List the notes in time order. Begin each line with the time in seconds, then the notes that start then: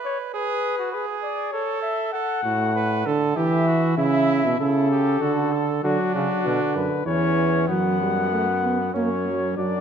Already playing: B4
0.05 C#5
0.34 G#4 B4
0.79 F#4
0.92 G#4 B4
1.23 D5
1.52 A4 C#5
1.83 E5
2.13 A4 F#5
2.44 A2 F#4
2.75 B4
3.06 D3 A4
3.36 E3 G4 E5
3.68 F#4
3.98 C#3 E4 E5
4.45 B2
4.59 C#3 E4 A4
4.91 G4
5.21 D3 F#4
5.52 A4
5.83 D3 F#3 D4 F#4
6.15 C#3 F#4
6.45 B2 D3
6.76 F#2 B4
7.06 E2 E3 C#4 C#5
7.68 F#2 F#3 B3 F#5
8.01 G3
8.32 A3
8.64 B3
8.94 F#2 A#3 C#4 C#5
9.27 F#3
9.57 F#2 F#3 D4 D5